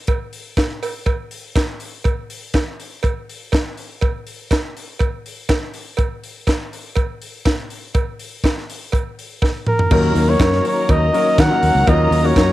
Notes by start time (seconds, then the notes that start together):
0.07 kick, closed hi-hat, cowbell
0.33 open hi-hat
0.57 kick, snare, clap, closed hi-hat, cowbell
0.83 open hi-hat, cowbell
1.06 kick, closed hi-hat, cowbell
1.31 open hi-hat
1.55 kick, snare, clap, closed hi-hat, cowbell
1.80 open hi-hat
2.04 kick, closed hi-hat, cowbell
2.30 open hi-hat
2.54 kick, snare, clap, closed hi-hat, cowbell
2.80 open hi-hat
3.03 kick, closed hi-hat, cowbell
3.29 open hi-hat
3.52 kick, snare, clap, closed hi-hat, cowbell
3.77 open hi-hat
4.01 kick, closed hi-hat, cowbell
4.27 open hi-hat
4.51 kick, snare, clap, closed hi-hat, cowbell
4.77 open hi-hat
4.99 kick, closed hi-hat, cowbell
5.26 open hi-hat
5.49 kick, snare, clap, closed hi-hat, cowbell
5.74 open hi-hat
5.97 kick, closed hi-hat, cowbell
6.24 open hi-hat
6.47 kick, snare, clap, closed hi-hat, cowbell
6.73 open hi-hat
6.96 kick, closed hi-hat, cowbell
7.22 open hi-hat
7.45 kick, snare, clap, closed hi-hat, cowbell
7.70 open hi-hat
7.95 kick, closed hi-hat, cowbell
8.19 open hi-hat
8.44 kick, snare, clap, closed hi-hat, cowbell
8.58 snare
8.70 open hi-hat
8.92 kick, closed hi-hat, cowbell
9.19 open hi-hat
9.42 kick, snare, cowbell
9.67 A#4, mid tom
9.79 floor tom
9.91 D#2 D#3 F#3 A#3 C#4 D#4 F#4 A#4 A#5, kick, crash, cowbell
10.15 D#2, open hi-hat
10.28 F#3 A#3 C#4 D#4 A#4 C#5
10.39 F#2, kick, snare, clap, closed hi-hat, cowbell
10.53 snare
10.65 C#5, open hi-hat
10.89 D#2 D#5, kick, closed hi-hat, cowbell
11.13 F#3 A#3 C#4 D#4 A#4, open hi-hat
11.38 D#3 F#5, kick, snare, clap, closed hi-hat, cowbell
11.50 F#3 A#3 C#4 D#4 A#4
11.63 D#2, open hi-hat
11.75 C#2
11.86 D#2 F#3 A#3 C#4 D#4 F4 G#4 D#5, kick, closed hi-hat, cowbell
12.11 D#2, open hi-hat
12.23 F#3 A#3 C#4 D#4 F#4 C#5
12.36 F#2, kick, snare, clap, closed hi-hat, cowbell